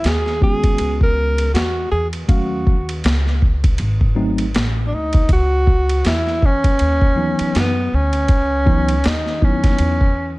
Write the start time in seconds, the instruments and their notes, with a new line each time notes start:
0.04 upright bass D#2, tenor saxophone G#4, snare, hi-hat pedal, ride
0.26 snare
0.40 tine electric piano G#3 B3 C#4 F#4, tenor saxophone G#4, kick
0.64 kick, ride
0.78 upright bass C#2, ride
1.01 tenor saxophone A#4, kick
1.38 ride
1.54 upright bass E2, tenor saxophone F#4, snare, hi-hat pedal, ride
1.91 upright bass E2, tenor saxophone G#4
2.13 ride
2.28 upright bass D#2, tine electric piano F#3 A3 C#4 F5, tenor saxophone F#4, kick, ride
2.67 kick
2.89 ride
3.04 upright bass C#2, snare, hi-hat pedal, ride
3.27 snare
3.42 kick
3.64 kick, ride
3.78 upright bass G#1, ride
4.01 kick
4.15 tine electric piano F#3 A3 C4 D#4
4.38 ride
4.54 upright bass A1, snare, hi-hat pedal, ride
4.87 tenor saxophone D4
4.92 upright bass D2, tenor saxophone D#4
5.13 kick, ride
5.29 upright bass C#2, tenor saxophone F#4, kick, ride
5.67 kick
5.89 ride
6.05 upright bass E2, tenor saxophone E4, snare, hi-hat pedal, ride
6.27 snare
6.42 tenor saxophone C#4, kick
6.64 kick, ride
6.79 upright bass D#2, ride
7.01 kick
7.15 tine electric piano E3 F#3 B3 D#4
7.39 muted upright bass stroke, ride
7.55 upright bass F#2, tenor saxophone B3, snare, hi-hat pedal, ride
7.93 upright bass D2, tenor saxophone C#4
8.13 ride
8.28 upright bass C#2, kick, ride
8.65 tine electric piano E3 F#3 B3 D#4, kick
8.89 ride
9.04 upright bass D#2, tenor saxophone D#4, snare, hi-hat pedal, ride
9.26 snare
9.41 tine electric piano F#3 B3 D#4 E4, tenor saxophone C#4, kick
9.64 kick, snare, ride
9.79 upright bass E2, ride
10.01 kick